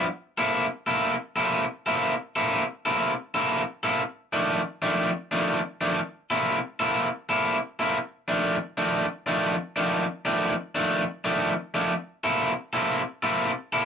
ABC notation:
X:1
M:4/4
L:1/8
Q:"Swing" 1/4=121
K:Cmix
V:1 name="Overdriven electric guitar"
z [C,B,EA] z [C,B,EA] z [C,B,EA] z [C,B,EA] | z [C,B,EA] z [C,B,EA] z [C,B,EA] z [C,B,EA] | z [F,,_E,A,D] z [F,,E,A,D] z [F,,E,A,D] z [F,,E,A,D] | z [C,B,EA] z [C,B,EA] z [C,B,EA] z [C,B,EA] |
z [F,,_E,A,D] z [F,,E,A,D] z [F,,E,A,D] z [F,,E,A,D] | z [F,,_E,A,D] z [F,,E,A,D] z [F,,E,A,D] z [F,,E,A,D] | z [C,B,EA] z [C,B,EA] z [C,B,EA] z [C,B,EA] |]